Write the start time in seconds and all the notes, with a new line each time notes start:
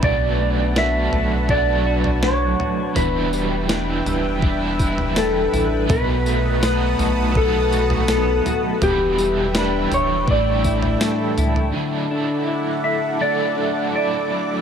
Already playing: G3 D4 E4 B4
0.02 B1 B2 F#3 A3 D4 D5 F#5 A5, kick, floor tom
0.06 F#4
0.40 A3
0.75 F#3 A3 D4 E5, snare
0.80 F#4
1.12 B1 A3, floor tom
1.46 F#3, kick, floor tom
1.50 A3 D4 D5
1.58 F#4
1.86 F#4
2.04 floor tom
2.23 D4 C#5, snare
2.60 F#4, floor tom
2.95 E1 E2 B2 E3 G3 D4 E4 B4 E5 G5, floor tom, tambourine
3.33 G3, tambourine
3.67 E3 G3 D4, snare, tambourine
3.72 E4
4.05 E1 G3, floor tom, tambourine
4.39 E3, kick, floor tom
4.43 G3 D4
4.50 E4
4.79 E4, kick, tambourine
4.98 floor tom
5.16 D4 A4, snare, tambourine
5.52 A1 E4, floor tom, tambourine
5.87 B1 B2 F#3 A3 D#4 F#4 B4 F#5 A5 D#6, kick, floor tom, tambourine
6.26 A3, tambourine
6.60 F#3 A3 B3 D#4 B4, snare, tambourine
6.65 F#4
6.99 B1 A3, floor tom, tambourine
7.32 F#3, kick, floor tom
7.37 A3 B3 D#4 A4
7.43 F#4
7.72 F#4, tambourine
7.90 floor tom
8.08 B3 A4, snare, tambourine
8.46 F#4, floor tom, tambourine
8.80 E1 E2 B2 E3 G3 D4 E4 G4 E5 G5, floor tom, tambourine
9.18 G3, tambourine
9.54 E3 G3 D4 B4, snare, tambourine
9.59 E4
9.91 E1 G3 C#5, floor tom, tambourine
10.25 A1 A2 E3 A4 E5, kick, floor tom
10.29 G3 D4 D5
10.36 E4
10.64 E4, kick, tambourine
10.82 floor tom
11.01 D4, snare, tambourine
11.37 C#2 E4, floor tom, tambourine
11.56 floor tom
11.73 D3 F#3 A3 D4 E4 A4 E5 F#5 D6
12.09 D4 E4
12.15 A3
12.47 E4
12.84 D4 E5
13.20 D3 F#3 A3 D4 E4 D5
13.56 D4
13.93 F#3 A3 D4 E4 D5
13.98 E4
14.30 D4